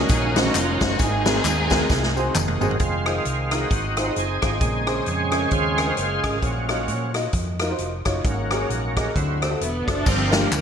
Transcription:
Already playing: tonewheel organ D#3 F#3 A#3 C#4 F#4
0.09 fingered electric bass A#1, string section C#4 D#4 G#4, kick, closed hi-hat, tambourine
0.35 grand piano C#4 D#4 F#4 C5, string section F#4, snare, closed hi-hat, tambourine
0.54 fingered electric bass F1, string section F4, clap, closed hi-hat, tambourine
0.80 fingered electric bass F#1, grand piano C#4 D#4 F#4 C5, string section F#4, kick, snare, closed hi-hat, tambourine
0.99 fingered electric bass G#1, grand piano G#2, tonewheel organ G#3 C4, string section C4 D#4 G#4, kick, closed hi-hat, tambourine
1.25 grand piano C4 F#4 G#4 A#4, snare, closed hi-hat, tambourine
1.44 fingered electric bass D#2, clap, closed hi-hat, tambourine
1.70 grand piano C4 F#4 G#4 A#4, kick, snare, closed hi-hat, tambourine
1.89 fingered electric bass C2, kick, snare, tambourine
2.03 snare
2.16 grand piano C4 F#4 G#4 C5, tambourine
2.35 fingered electric bass F1, clap, mid tom, tambourine
2.48 mid tom
2.60 fingered electric bass F#1, grand piano C4 F#4 G#4 C5, floor tom, tambourine
2.71 floor tom
2.79 fingered electric bass F1, tonewheel organ G#3 C4 F4, kick, closed hi-hat
3.06 tonewheel organ D#3 G#3 C4, grand piano D#4 F4 G#4 C5, cross-stick, closed hi-hat
3.25 fingered electric bass C2, closed hi-hat
3.51 tonewheel organ C4 D#4 F#4, grand piano D#4 F4 G#4 A#4, cross-stick, closed hi-hat
3.71 fingered electric bass G#1, kick, closed hi-hat
3.97 grand piano D#4 F4 G#4 C5, cross-stick, closed hi-hat
4.06 grand piano D#4 F4 G#4 C5
4.16 fingered electric bass F#1, tonewheel organ C4 D#4 G#4, closed hi-hat
4.42 fingered electric bass G#1, grand piano D#4 F4 G#4 C5, kick, cross-stick, closed hi-hat
4.60 fingered electric bass A#1, grand piano A#2, tonewheel organ C#3 G#3 C4, kick, closed hi-hat
4.87 grand piano C#4 G#4 A#4 C5, cross-stick, closed hi-hat
5.06 fingered electric bass F2, tonewheel organ C4 C#4 G#4, closed hi-hat
5.31 grand piano C#4 G#4 A#4 D#5, cross-stick, closed hi-hat
5.51 fingered electric bass D#2, tonewheel organ F4 G#4 C5, kick, closed hi-hat
5.78 grand piano C#4 G#4 A#4 C#5, cross-stick, closed hi-hat
5.87 grand piano C#4 G#4 A#4 C5
5.97 fingered electric bass F#1, closed hi-hat
6.23 fingered electric bass G#1, grand piano C#4 G#4 A#4 D#5, kick, cross-stick, closed hi-hat
6.42 fingered electric bass A#1, grand piano A#2, tonewheel organ F3 F#3 C#4, kick, closed hi-hat
6.69 grand piano D#4 F4 F#4 C#5, cross-stick, closed hi-hat
6.88 fingered electric bass A#2, closed hi-hat
7.14 grand piano D#4 F4 F#4 D#5, cross-stick, closed hi-hat
7.33 fingered electric bass F2, kick, closed hi-hat
7.59 grand piano D#4 F4 F#4 A#4, cross-stick, closed hi-hat
7.70 grand piano D#4 F4 F#4 C5
7.78 fingered electric bass F1, closed hi-hat
8.05 fingered electric bass F#1, grand piano D#4 F4 F#4 C#5, kick, cross-stick, closed hi-hat
8.24 fingered electric bass G#1, grand piano G#2, tonewheel organ F#3 A#3 C#4, kick, closed hi-hat
8.51 grand piano F#4 G#4 A#4 C#5, cross-stick, closed hi-hat
8.69 fingered electric bass A#1, closed hi-hat
8.96 grand piano F#4 G#4 A#4 D#5, kick, cross-stick, closed hi-hat
9.14 fingered electric bass D2, grand piano D3, tonewheel organ F#3 C4 E4, kick, closed hi-hat
9.41 grand piano F#4 A4 C5 D5, cross-stick, closed hi-hat
9.50 grand piano F#4 A4 C5 E5
9.61 fingered electric bass E1, string section B3, closed hi-hat
9.87 fingered electric bass F#1, string section D4, grand piano F#4 A4 C5 E5, kick, cross-stick, closed hi-hat
10.05 fingered electric bass G1, grand piano G2, string section F3 C4, tonewheel organ D4 G4 A#4 F5, kick, crash, tambourine
10.31 string section A#3, grand piano D4 F4 G4 A#4 D5, snare, ride, tambourine
10.52 fingered electric bass D2, string section A#3, clap, ride, tambourine

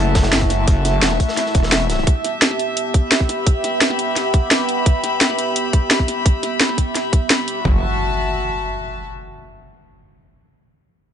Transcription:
Already playing: detuned saw bass F#1, analog synth pad A3 E4 E5, string section F#4 E5 A5
0.15 kick, snare, closed hi-hat
0.23 snare, closed hi-hat
0.33 snare, closed hi-hat
0.41 kick, closed hi-hat
0.50 snare, closed hi-hat
0.68 detuned saw bass F#1, kick, closed hi-hat
0.85 snare, closed hi-hat
1.02 detuned saw bass E1, snare, closed hi-hat
1.11 snare
1.20 kick, closed hi-hat
1.29 snare
1.37 snare, closed hi-hat
1.46 snare
1.54 detuned saw bass E1, kick, closed hi-hat
1.63 snare
1.72 snare, closed hi-hat
1.81 closed hi-hat
1.90 snare, closed hi-hat
1.98 snare
2.07 analog synth pad B3 G4, string section G4, kick, closed hi-hat
2.25 snare, closed hi-hat
2.42 snare, closed hi-hat
2.51 snare
2.59 closed hi-hat
2.77 closed hi-hat
2.94 kick, closed hi-hat
3.03 string section B5
3.12 snare, closed hi-hat
3.20 kick
3.29 snare, closed hi-hat
3.47 kick, closed hi-hat
3.64 snare, closed hi-hat
3.81 snare, closed hi-hat
3.90 snare
3.99 closed hi-hat
4.16 snare, closed hi-hat
4.34 kick, closed hi-hat
4.51 snare, closed hi-hat
4.69 closed hi-hat
4.86 kick, closed hi-hat
5.04 snare, closed hi-hat
5.21 snare, closed hi-hat
5.30 snare
5.39 closed hi-hat
5.56 closed hi-hat
5.73 kick, closed hi-hat
5.91 snare, closed hi-hat
5.99 kick
6.08 snare, closed hi-hat
6.26 kick, closed hi-hat
6.43 snare, closed hi-hat
6.61 snare, closed hi-hat
6.69 snare
6.78 kick, closed hi-hat
6.95 snare, closed hi-hat
7.13 kick, closed hi-hat
7.30 snare, closed hi-hat
7.48 closed hi-hat
7.65 detuned saw bass F#1, analog synth pad A3 F#4 E5, string section F#4, kick, floor tom, impact
7.70 string section E5
7.76 string section A5

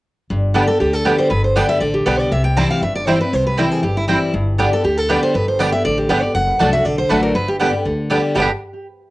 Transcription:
0.30 upright bass G1, steel-string acoustic guitar G2
0.54 steel-string acoustic guitar D3 G3 B3 G4, five-string banjo G3 B3 D4, mandolin B3 G4 D5 G5
0.68 steel-string acoustic guitar B3 G4 A4
0.80 upright bass D2, steel-string acoustic guitar D3 G4
0.93 steel-string acoustic guitar A4
1.05 steel-string acoustic guitar D3 G3 B3 G4 B4, five-string banjo G3 B3 D4, mandolin B3 G4 D5 G5
1.18 steel-string acoustic guitar C5
1.30 upright bass G1, steel-string acoustic guitar G2 B4
1.44 steel-string acoustic guitar C5
1.56 steel-string acoustic guitar D3 G3 B3 G4 D5, five-string banjo G3 B3 D4, mandolin B3 G4 D5 G5
1.69 steel-string acoustic guitar E5
1.80 upright bass A1, steel-string acoustic guitar D3 D5
1.94 steel-string acoustic guitar G4
2.06 upright bass B1, steel-string acoustic guitar D3 G3 B3 G4 B4, five-string banjo G3 B3 D4, mandolin B3 G4 D5 G5
2.19 steel-string acoustic guitar D5
2.31 upright bass C2, steel-string acoustic guitar C3 E5
2.44 steel-string acoustic guitar G5
2.56 steel-string acoustic guitar E3 G3 C4 E4 A5, five-string banjo G3 C4 E4, mandolin C4 E4 C5 G5
2.70 steel-string acoustic guitar F5
2.82 upright bass G1, steel-string acoustic guitar G2 E5
2.95 steel-string acoustic guitar D5
3.07 steel-string acoustic guitar E3 G3 C4 E4 C5, five-string banjo G3 C4 E4, mandolin C4 E4 C5 G5
3.20 steel-string acoustic guitar C4 E4 B4
3.33 upright bass C2, steel-string acoustic guitar C3 C5
3.47 steel-string acoustic guitar B4
3.57 steel-string acoustic guitar E3 G3 C4 E4 A4, five-string banjo G3 C4 E4, mandolin C4 E4 C5 G5
3.71 steel-string acoustic guitar G#4
3.83 upright bass G1, steel-string acoustic guitar G2 G4
3.97 steel-string acoustic guitar E4
4.07 steel-string acoustic guitar E3 G3 C4 E4, five-string banjo G3 C4 E4, mandolin C4 E4 C5 G5
4.33 upright bass G1, steel-string acoustic guitar G2
4.58 steel-string acoustic guitar D3 G3 B3 G4, five-string banjo G3 B3 D4, mandolin B3 G4 D5 G5
4.71 steel-string acoustic guitar B3 G4 A4
4.84 upright bass D2, steel-string acoustic guitar D3 G4
4.97 steel-string acoustic guitar A4
5.09 steel-string acoustic guitar D3 G3 B3 G4 B4, five-string banjo G3 B3 D4, mandolin B3 G4 D5 G5
5.23 steel-string acoustic guitar C5
5.34 upright bass G1, steel-string acoustic guitar G2 B4
5.48 steel-string acoustic guitar C5
5.59 steel-string acoustic guitar D3 G3 B3 G4 D5, five-string banjo G3 B3 D4, mandolin B3 G4 D5 G5
5.72 steel-string acoustic guitar B3 G4 E5
5.85 upright bass A1, steel-string acoustic guitar D3 D5
5.98 steel-string acoustic guitar G4
6.09 upright bass G1, steel-string acoustic guitar D3 G3 B3 G4 B4, five-string banjo G3 B3 D4, mandolin B3 G4 D5 G5
6.22 steel-string acoustic guitar B3 G4 D5
6.35 upright bass F#1, steel-string acoustic guitar F#2 F#5
6.59 upright bass C2, steel-string acoustic guitar F#3 A3 D4 F#4, mandolin A3 F#4 D5 A5, five-string banjo A3 D4
6.73 steel-string acoustic guitar D4 F#4 E5
6.85 upright bass B1, steel-string acoustic guitar D3 D5
6.98 steel-string acoustic guitar C5
7.09 upright bass A1, steel-string acoustic guitar F#3 A3 D4 F#4 B4, mandolin A3 F#4 D5 A5, five-string banjo A3 D4
7.23 steel-string acoustic guitar A#4
7.35 upright bass G1, steel-string acoustic guitar G2 B4
7.48 steel-string acoustic guitar G4
7.60 steel-string acoustic guitar D3 G3 B3 G4, five-string banjo G3 B3 D4, mandolin B3 G4 D5 G5
7.73 steel-string acoustic guitar B3 G4
7.85 upright bass D2, steel-string acoustic guitar D3
8.10 steel-string acoustic guitar D3 G3 B3 G4, five-string banjo G3 B3 D4, mandolin B3 G4 D5 G5
8.35 upright bass G1, steel-string acoustic guitar G2 B2 D3 G3 B3 G4, five-string banjo G3 B3, mandolin B3 G4 D5 G5
8.40 five-string banjo D4 G4

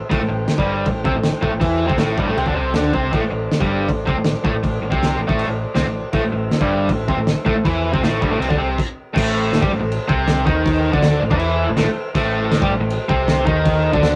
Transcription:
0.10 picked electric bass A1, overdriven electric guitar A2 A3, transistor combo organ A4 C5 G5, kick, crash
0.20 picked electric bass A1, overdriven electric guitar A2
0.29 picked electric bass A1, overdriven electric guitar A2
0.48 snare, crash
0.58 picked electric bass G1, overdriven electric guitar G2 G3, kick
0.86 picked electric bass A1, overdriven electric guitar A2, kick, crash
1.04 picked electric bass C2, overdriven electric guitar C3 C4, kick
1.15 picked electric bass A1, overdriven electric guitar A2
1.24 snare, crash
1.42 picked electric bass A1, overdriven electric guitar A2 A3, kick
1.51 picked electric bass A1, overdriven electric guitar A2
1.60 picked electric bass E2, overdriven electric guitar E3 E4, kick, crash
1.88 picked electric bass C2, overdriven electric guitar C3 C4, kick
1.98 picked electric bass A1, overdriven electric guitar A2 A3, snare, crash
2.17 picked electric bass G1, overdriven electric guitar G2 G3, kick
2.26 picked electric bass A1, overdriven electric guitar A2 A3
2.37 picked electric bass C2, overdriven electric guitar C3 C4, crash
2.46 picked electric bass D2, overdriven electric guitar D3 D4, kick
2.54 picked electric bass C2, overdriven electric guitar C3 C4
2.74 picked electric bass D2, overdriven electric guitar D3 D4, snare, crash
2.93 picked electric bass C2, overdriven electric guitar C3 C4, kick
3.12 picked electric bass A1, overdriven electric guitar A2 A3, transistor combo organ A4 C5 D5, kick, crash
3.22 picked electric bass A1, overdriven electric guitar A2
3.31 picked electric bass A1, overdriven electric guitar A2
3.52 snare, crash
3.60 picked electric bass G1, overdriven electric guitar G2 G3, kick
3.88 picked electric bass A1, overdriven electric guitar A2, kick, crash
4.06 picked electric bass C2, overdriven electric guitar C3 C4, kick
4.16 picked electric bass A1, overdriven electric guitar A2
4.25 snare, crash
4.44 picked electric bass A1, overdriven electric guitar A2 A3, kick
4.53 picked electric bass A1, overdriven electric guitar A2
4.63 picked electric bass A1, overdriven electric guitar A2, kick, crash
4.81 picked electric bass A1, overdriven electric guitar A2
4.90 picked electric bass C2, overdriven electric guitar C3 C4, kick
5.03 snare, crash
5.19 picked electric bass A1, overdriven electric guitar A2
5.27 picked electric bass A1, overdriven electric guitar A2 A3, kick
5.39 crash
5.46 picked electric bass A1, overdriven electric guitar A2
5.75 picked electric bass C2, overdriven electric guitar C3 C4, snare, crash
5.85 picked electric bass A1, overdriven electric guitar A2
6.11 picked electric bass A1, overdriven electric guitar A2 A3, transistor combo organ A4 C5 E5, kick, crash
6.23 picked electric bass A1, overdriven electric guitar A2
6.32 picked electric bass A1, overdriven electric guitar A2
6.51 snare, crash
6.61 picked electric bass G1, overdriven electric guitar G2 G3, kick
6.89 picked electric bass A1, overdriven electric guitar A2, kick, crash
7.08 picked electric bass C2, overdriven electric guitar C3 C4, kick
7.17 picked electric bass A1, overdriven electric guitar A2
7.27 snare, crash
7.45 picked electric bass A1, overdriven electric guitar A2 A3, kick
7.56 overdriven electric guitar A2
7.65 picked electric bass E2, overdriven electric guitar E3 E4, kick, crash
7.92 picked electric bass C2, overdriven electric guitar C3 C4, kick
8.01 picked electric bass A1, overdriven electric guitar A2 A3, snare, crash
8.21 picked electric bass G1, overdriven electric guitar G2 G3, kick
8.30 picked electric bass A1, overdriven electric guitar A2 A3
8.39 picked electric bass C2, overdriven electric guitar C3 C4, crash
8.49 picked electric bass D2, overdriven electric guitar D3 D4, kick
8.57 picked electric bass C2, overdriven electric guitar C3 C4
8.78 kick, crash
9.12 picked electric bass A1, overdriven electric guitar A2 A3, transistor combo organ A4 C5, kick
9.17 crash
9.53 snare, crash
9.61 picked electric bass G2, overdriven electric guitar G3 G4, kick
9.71 picked electric bass A1, overdriven electric guitar A2
9.80 picked electric bass A1, overdriven electric guitar A2
9.92 crash
10.08 picked electric bass C2, overdriven electric guitar C3 C4, kick
10.28 snare, crash
10.46 picked electric bass D#2, overdriven electric guitar D#3 D#4, kick
10.66 kick, crash
10.92 picked electric bass D2, overdriven electric guitar D3 D4, kick
11.03 snare, crash
11.21 picked electric bass A1, overdriven electric guitar A2
11.30 picked electric bass E2, overdriven electric guitar E3 E4, kick
11.39 crash
11.59 transistor combo organ A5
11.68 picked electric bass A1, overdriven electric guitar A2
11.75 picked electric bass A1, overdriven electric guitar A2 A3, transistor combo organ E5, snare, crash
11.87 muted overdriven electric guitar stroke, muted picked electric bass stroke
12.14 picked electric bass A1, overdriven electric guitar A2 A3, transistor combo organ A4 C5, kick, crash
12.52 snare, crash
12.62 picked electric bass G2, overdriven electric guitar G3 G4, kick
12.70 picked electric bass A1, overdriven electric guitar A2
12.80 picked electric bass A1, overdriven electric guitar A2
12.90 crash
13.08 picked electric bass C2, overdriven electric guitar C3 C4, kick
13.28 snare, crash
13.45 picked electric bass D#2, overdriven electric guitar D#3 D#4, kick
13.65 kick, crash
13.93 picked electric bass D2, overdriven electric guitar D3 D4, kick
14.03 snare, crash

